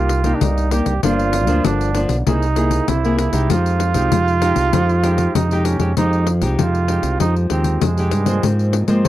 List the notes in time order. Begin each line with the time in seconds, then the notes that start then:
Already playing: C2 C3 A#3 D#4 F4 G4
0.09 pandeiro
0.24 A#3 D#4 G4, pandeiro
0.35 D4
0.41 C2 G2 D#4, pandeiro
0.58 pandeiro
0.71 A#3 D#4 G4, pandeiro
0.86 C2, pandeiro
1.03 G1 G2 F3 A#3 D4 F4, pandeiro
1.19 pandeiro
1.33 pandeiro
1.47 D2 F3 A#3 D4, pandeiro
1.65 G1 D3 D4, pandeiro
1.81 pandeiro
1.95 F3 A#3 D4, pandeiro
2.09 B1, pandeiro
2.27 C2 C3 A#3 D#4 E4 G#4, pandeiro
2.42 pandeiro
2.56 A#3 E4 G#4, pandeiro
2.71 pandeiro
2.88 C2 C3 E4, pandeiro
3.05 A#3 E4 G#4, pandeiro
3.18 E4, pandeiro
3.33 C2 G#3 D#4 G4, pandeiro
3.50 F2 F3 F4, pandeiro
3.66 pandeiro
3.80 pandeiro
3.94 C2 G#3 D#4 G4, pandeiro
4.12 F2 C3, pandeiro
4.28 pandeiro
4.42 G#3 D#4 G4, pandeiro
4.56 C2, pandeiro
4.73 F2 F3, pandeiro
4.89 pandeiro
5.03 G#3 D#4 G4, pandeiro
5.18 pandeiro
5.35 F2 C3 D#4, pandeiro
5.51 G#3 D#4 G4, pandeiro
5.65 C#4, pandeiro
5.79 F2 G#3 D#4 G4, pandeiro
5.97 F2 F3 G#3 D#4 G4, pandeiro
6.13 pandeiro
6.27 pandeiro
6.41 C2 G#3 D#4 G4, pandeiro
6.59 F2 C3 F4, pandeiro
6.75 pandeiro
6.88 G#3 D#4 G4, pandeiro
7.03 C2, pandeiro
7.20 F2 F3 D#4, pandeiro
7.36 pandeiro
7.50 D#2 G#3 C4 D#4 G4, pandeiro
7.64 pandeiro
7.81 F2 C3 G#3, pandeiro
7.98 G#3 D#4 G4, pandeiro
8.11 G2, pandeiro
8.26 F3 A#3 C4, pandeiro
8.43 G#2, pandeiro
8.59 pandeiro
8.73 pandeiro
8.88 F3 G#3 A#3 C4, pandeiro
9.05 pandeiro